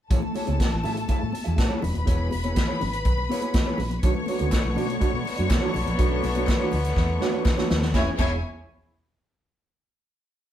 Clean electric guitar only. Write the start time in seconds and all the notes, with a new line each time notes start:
0.10 A3 E4 G#4 C#5
0.21 muted clean electric guitar stroke
0.34 A3 E4 G#4 C#5
0.47 A3 E4 G#4 C#5
0.59 muted clean electric guitar stroke
0.71 muted clean electric guitar stroke
0.83 A3 E4 G#4 E5
0.96 muted clean electric guitar stroke
1.08 A3 E4 G#4 E5
1.21 muted clean electric guitar stroke
1.33 muted clean electric guitar stroke
1.44 A3 E4 G#4 E5
1.57 muted clean electric guitar stroke
1.69 A3 E4 G#4 C#5
1.82 muted clean electric guitar stroke
1.94 muted clean electric guitar stroke
2.06 B3 E4 G#4 C#5
2.31 muted clean electric guitar stroke
2.44 B3 E4 G#4 C#5
2.55 muted clean electric guitar stroke
2.67 B3 E4 G#4 C#5
2.81 muted clean electric guitar stroke
2.94 muted clean electric guitar stroke
3.06 muted clean electric guitar stroke
3.17 muted clean electric guitar stroke
3.30 B3 E4 G#4 C#5
3.42 B3 E4 G#4 C#5
3.55 muted clean electric guitar stroke
3.66 B3 E4 G#4 C#5
3.79 muted clean electric guitar stroke
3.91 muted clean electric guitar stroke
4.03 A3 D4 F#4 C#5
4.15 muted clean electric guitar stroke
4.27 A3 D4 F#4 C#5
4.40 A3 D4 F#4 C#5
4.50 muted clean electric guitar stroke
4.63 muted clean electric guitar stroke
4.75 A3 D4 F#4 D5
4.88 muted clean electric guitar stroke
5.00 A3 D4 F#4 D5
5.12 muted clean electric guitar stroke
5.25 muted clean electric guitar stroke
5.36 A3 D4 F#4 D5
5.48 muted clean electric guitar stroke
5.61 A3 D4 F#4 C#5
5.73 muted clean electric guitar stroke
5.85 muted clean electric guitar stroke
5.97 A3 D4 F#4 C#5
6.23 muted clean electric guitar stroke
6.35 A3 D4 F#4 C#5
6.48 muted clean electric guitar stroke
6.60 A3 D4 F#4 C#5
6.72 muted clean electric guitar stroke
6.83 muted clean electric guitar stroke
6.97 muted clean electric guitar stroke
7.08 muted clean electric guitar stroke
7.20 A3 D4 F#4 C#5
7.33 A3 D4 F#4 C#5
7.45 muted clean electric guitar stroke
7.57 A3 D4 F#4 C#5
7.69 muted clean electric guitar stroke
7.82 muted clean electric guitar stroke
7.93 B3 E4 G#4 C#5
8.18 B3 E4 G#4 C#5